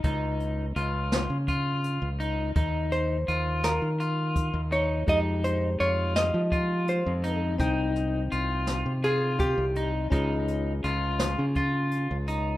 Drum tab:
HH |xxxxxxx|xxxxxxx|xxxxxxx|xxxxxxx|
SD |---o---|---o---|-o-o---|-o-o---|
BD |o---o--|o----o-|o---o--|o----o-|

HH |xxxxxxx|
SD |---o---|
BD |o---o--|